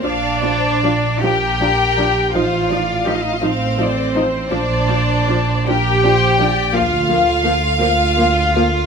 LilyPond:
<<
  \new Staff \with { instrumentName = "Violin section" } { \time 6/8 \key bes \major \tempo 4. = 55 d''4. g''4. | f''4. c''4. | d''4. g''4. | f''4. f''4. | }
  \new Staff \with { instrumentName = "Violin section" } { \time 6/8 \key bes \major f''8 c''8 d''8 bes'4. | c''8 d''8 ees''8 f''8 d''8 c''8~ | c''4. bes'8 c''8 d''8 | f''2. | }
  \new Staff \with { instrumentName = "Cello section" } { \time 6/8 \key bes \major d'4. g'4. | f'4 g'32 f'32 ees'32 f'32 c'4. | d'4. g'4. | f'4. f'4. | }
  \new Staff \with { instrumentName = "Viola section" } { \clef bass \time 6/8 \key bes \major <f d'>8 <f d'>8 <f d'>8 <f d'>8 <f d'>8 <f d'>8 | <f ees'>8 <f ees'>8 <f ees'>8 <f ees'>8 <f ees'>8 <f ees'>8 | <f d'>8 <f d'>8 <f d'>8 <f d'>8 <f d'>8 <f d'>8 | <f bes>8 <f bes>8 <f bes>8 <f bes>8 <f bes>8 <f bes>8 | }
  \new Staff \with { instrumentName = "Double bass section" } { \clef bass \time 6/8 \key bes \major bes,,4. bes,,4. | a,,4. a,,4. | bes,,4. bes,,4. | d,4. d,4. | }
>>